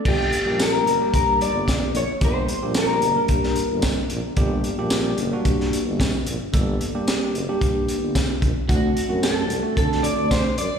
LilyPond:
<<
  \new Staff \with { instrumentName = "Clean electric guitar" } { \time 4/4 \key g \minor \tempo 4 = 111 g'4 bes'4 bes'8 d''4 cis''8 | c''4 bes'2 r4 | r1 | r1 |
fis'4 a'4 a'8 d''8 c''8 d''8 | }
  \new Staff \with { instrumentName = "Tine electric piano" } { \time 4/4 \key g \minor <g bes d' g'>8 r16 <g bes d' g'>8. r16 <g bes d' g'>4. r8. | <g bes d' g'>8 r16 <g bes d' g'>8. r16 <g bes d' bes'>4. r8. | <g bes d' g'>8 r16 <g bes d' g'>8. r16 <g bes d' fis'>4. r8. | <g bes d' a'>8 r16 <g bes d' g'>8. r16 <g bes d' g'>4. r8. |
<a c' d' fis'>8 r16 <a c' d' fis'>8. r16 <a c' d' fis'>4. r8. | }
  \new Staff \with { instrumentName = "Tuba" } { \clef bass \time 4/4 \key g \minor g,,8 r16 bes,,8. fis,,16 r16 g,8. g,,8. bes,,16 g,,16 | g,,8 r16 bes,,8. fis,,16 r16 g,8. g,,8. bes,,16 g,,16 | g,,8 r16 bes,,8. fis,,16 r16 g,8. g,,8. bes,,16 g,,16 | g,,8 r4 fis,,16 r16 g,8. g,,8. bes,,16 g,,16 |
d,8 r16 fis,8. c,16 r16 d8. d,8. fis,16 d,16 | }
  \new DrumStaff \with { instrumentName = "Drums" } \drummode { \time 4/4 <cymc bd>8 hh8 <hh sn tamb>8 hh8 <hh bd>8 hh8 <hh bd sn tamb>8 hh8 | <hh bd>8 hh8 <hh sn tamb>8 hh8 <hh bd>16 sn16 hh8 <hh bd sn tamb>8 hh8 | <hh bd>8 hh8 <hh sn tamb>8 hh8 <hh bd>16 sn16 hh8 <hh bd sn tamb>8 hh8 | <hh bd>8 hh8 <hh sn tamb>8 hh8 <hh bd>8 hh8 <hh bd sn tamb>8 <hh bd>8 |
<hh bd>8 hh8 <hh sn tamb>8 hh8 <hh bd>16 sn16 hh8 <hh bd sn tamb>8 hh8 | }
>>